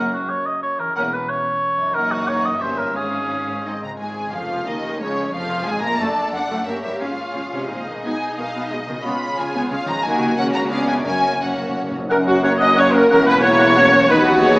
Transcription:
Already playing: F#1 F#2 A#3 C#4 F#4 A#4 F#5
0.13 F#4
0.29 C#5
0.46 D#5
0.63 C#5
0.78 E2 A#4
0.83 C#4
0.87 F#4
0.92 A#4 F#5
0.96 E1 E2 A#3 C#4 A#4
1.13 B4
1.29 C#5
1.78 F#2
1.82 D#4
1.86 F#4
1.91 A#4 F#5
1.96 F#1 F#2 A#3 D#4
2.12 F#4
2.28 C#5
2.44 G2 D#5
2.48 C#4
2.53 E4
2.57 C#5 E5
2.61 G1 G2 A#3 C#4 C5
2.78 G#2 A#4
2.82 C#4
2.87 F4
2.91 C#5
2.95 G#1 G#2 C#4 G#4 F5
3.47 G#2
3.52 C4
3.56 D#4
3.61 D#5
3.65 G#1 G#2 C4 D#4 D#5
3.82 C#3 A#5
3.86 G#3
3.91 F4
3.95 G#2 G#4 C#5 G#5
3.99 G#1 G#3
4.33 F1 F2 F3 F4 F5
4.67 D#2 D#3 D#4 D#5
4.82 F2
4.87 G#3
4.92 F4
4.96 C#5
5.00 C#2 C#3 C#4 C#5
5.33 F1 F2 F3 F4 F5
5.66 G#1 G#2 G#3 G#4 G#5
5.81 A#1 F#2 A#2 A#3 A#4 A#5
5.86 A3
5.90 A4
5.95 A4 D5
5.99 F#1 F#2 A3 D4 A5
6.33 F#1 F#2 D3 F#5
6.48 F#1 F#2 G2 A3
6.53 A#3
6.57 G4
6.62 C#5
6.66 G1 G2 A#3 C#4 G4 A#4 C#5 E5
6.82 G1 G2 G#2 G3 E5
6.87 G#3
6.91 F4
6.96 C#5
7.01 G#1 G#2 G#3 C#4 F4 G#4 F5
7.35 G#1 C#3 F3
7.51 G#1 G#2 C3 C#4
7.56 G#3
7.60 D#4
7.65 C5
7.70 G#1 A#2 G#3 C4 D#4 D#5
7.86 G#1 G#2 B2 D#3
7.90 G#3
7.94 D#4
7.99 D#5
8.04 B1 B2 G#3 B3 D#4 G#5
8.38 B1 B2 D#3 F5
8.55 B1 B2 B3
8.72 B1 B2 G#3 D#5
8.87 B1 B2 C#3 D#3
8.91 G#3
8.96 F4
9.00 C#5
9.04 C#2 C#3 G#3 B3 F4 G#4 C#5 B5
9.38 C#2 C#3 F3 G#5
9.54 C#2 C#3 B3
9.71 C#2 C#3 G#3 F5
9.85 C#2 C#3 D#3 F3 A#5
9.90 F#3
9.94 F#4
9.99 A#4
10.03 D#2 D#3 A#3 F#4 A#4 G#5
10.19 C#3
10.23 F#3
10.28 F#4
10.32 A#4
10.37 C#2 C#3 A#3 C#4 F#4 C#5 F#5
10.52 C#3 A#5
10.57 G#3
10.61 D4
10.66 B3 B4
10.70 B3 C#4 D4 G#4 D5 F5
10.87 F#2 G#5
10.91 F#3
10.96 C#4
11.00 A#4
11.05 F#1 F#2 A#3 C#4 F#4 C#5 G#5
11.13 F#2
11.21 F#2
11.29 F#2
11.37 F#2
11.41 F#2 A#3 C#4 F#4 C#5 F#5
11.52 F#2
11.60 F#2
11.68 F#2
11.76 F#2
11.83 F#2
11.91 F#2
11.98 F#2
12.09 F#1 F#2 F#3 C#4 A#4 F#5
12.27 F#3 C#4 F#4 F#5
12.43 A#3 C#4 C#5 F#5
12.60 C#4 A#4 D#5 F#5
12.76 F#3 C#4 C#5 F#5
12.93 C#3 C#4 A#4 F#5
13.10 E1 E2 E3 A#3 C#4 F#4 A#4 F#5
13.26 A#3 C#4 B4 F#5
13.43 A#3 E4 A#4 C#5 F#5
13.59 A#3 F#4 F#5
13.76 A#3 C#4 F#5
13.92 F#3 A#3 F#5
14.09 D#2 D#3 F#3 B3 D#4 F#4 B4 F#5
14.25 D#4 F#4
14.41 F#4 G#4 C#5

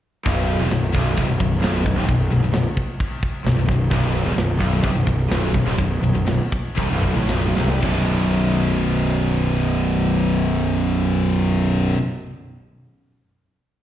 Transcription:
0.26 B0 B1, kick, crash
0.60 E1 E2
0.71 B0 B1, snare, crash
0.93 B0 B1, kick
1.17 C1 C2, kick, crash
1.27 B0 B1
1.40 B0 B1, kick
1.62 B0 B1, snare, crash
1.86 B0 B1, kick
1.96 D#1 D#2
2.08 B0 B1, kick, crash
2.31 B0 B1
2.43 B0 B1
2.54 B0 B1, snare, crash
2.77 kick
3.00 kick, crash
3.23 kick
3.46 B0 B1, snare, crash
3.57 B0 B1
3.65 B0 B1, kick
3.71 B1
3.91 B0 B1, kick, crash
4.25 E1 E2
4.36 B0 B1, snare, crash
4.61 B0 B1, kick
4.82 C1 C2, kick, crash
4.95 B0 B1
5.07 B0 B1, kick
5.28 B0 B1, snare, crash
5.32 B1
5.54 B0 B1, kick
5.65 D#1 D#2
5.78 B0 B1, kick, crash
6.01 B0 B1
6.14 B0 B1
6.26 B0 B1, snare, crash
6.52 kick
6.76 C1 C2, kick, crash
6.89 B0 B1
7.03 kick
7.15 A1 A2
7.28 B0 B1, snare, crash
7.32 B1
7.55 C1 C2, snare
7.68 snare
7.80 B0 B1 F#2 B2, kick, crash

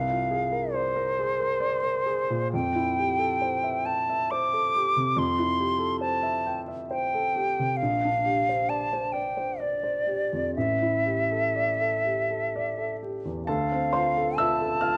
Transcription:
Already playing: C2 F5
0.09 F4
0.31 G#4
0.52 A#4
0.74 C5 D5
0.96 A#4
1.19 G#4
1.39 A#4
1.60 D5
1.83 A#4
2.06 G#4
2.30 A#2
2.53 F2 G5
2.75 E4
2.98 G4
3.19 A4
3.42 C5
3.64 E5
3.85 G5 A5
4.10 E5
4.31 C5 D6
4.53 A4
4.76 G4
4.96 C3
5.17 F2 C6
5.39 E4
5.58 G4
5.79 A4
6.01 C5 A5
6.23 E5
6.46 G5
6.68 E5
6.90 C5 G5
7.14 A4
7.36 G4
7.59 C3
7.77 F5
7.82 A#1
8.05 D4
8.25 G4
8.49 C5
8.69 D5 A5
8.93 C5
9.12 D5 G5
9.37 C5
9.60 D5
9.83 C5
10.07 G4
10.33 F2
10.56 A1 E5
10.82 E4
11.05 G4
11.31 A4
11.55 D5
11.81 A4
12.05 G4
12.31 A4
12.56 D5
12.78 A4
13.03 G4
13.25 E2
13.45 D2 A4 F5 A5
13.72 C4
13.93 F4 C5 C6
14.17 A4
14.37 F4 E5 A5 E6
14.61 A4
14.81 F4 F5 F6

